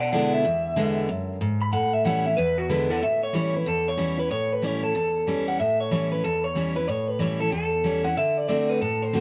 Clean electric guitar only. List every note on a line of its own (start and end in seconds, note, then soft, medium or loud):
0.01 0.11 D5 medium
0.01 0.12 F#5 medium
0.12 0.32 D5 medium
0.12 0.33 F#5 loud
0.33 1.27 E5 loud
1.62 1.72 B5 loud
1.73 1.93 F#5 loud
1.93 2.05 E5 medium
2.05 2.26 F#5 loud
2.26 2.37 E5 loud
2.37 2.57 B4 loud
2.58 2.69 F#4 medium
2.70 2.90 B4 medium
2.90 3.02 A4 loud
2.90 3.02 F#5 loud
3.03 3.23 E5 loud
3.23 3.34 C#5 medium
3.35 3.56 C#5 loud
3.56 3.67 B4 medium
3.68 3.88 A4 loud
3.88 4.19 C#5 medium
4.19 4.30 B4 medium
4.31 4.53 C#5 loud
4.53 4.64 B4 medium
4.64 4.85 C#5 medium
4.84 4.94 A4 medium
4.96 5.44 A4 loud
5.48 5.59 F#5 medium
5.60 5.80 E5 loud
5.81 5.91 C#5 medium
5.92 6.11 C#5 medium
6.12 6.24 B4 medium
6.24 6.43 A4 loud
6.44 6.74 C#5 medium
6.76 6.88 B4 medium
6.88 7.08 C#5 loud
7.08 7.19 B4 medium
7.19 7.40 C#5 medium
7.40 7.51 A4 medium
7.52 8.06 A4 medium
8.04 8.17 F#5 medium
8.17 8.38 E5 loud
8.38 8.47 D5 medium
8.48 8.70 D5 medium
8.69 8.80 B4 medium
8.81 9.02 A4 medium
9.02 9.20 C5 medium